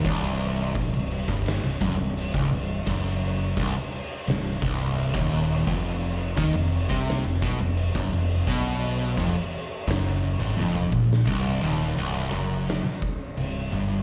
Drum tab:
CC |x-x-x-x-x-x-x-x-|x-x-x-x-x-x-x-x-|x-x-x-x-x-x-x-x-|x-x-x-x-x-x-----|
SD |--------o-------|--------o-------|--------o-------|--------o---o--o|
T2 |----------------|----------------|----------------|-------------o--|
BD |o---o--o--o--o--|o---o-----o--o--|o---o--o--o--o--|o---o---o-----o-|

CC |x---x---x---x---|
SD |--------o-------|
T2 |----------------|
BD |o---------o-----|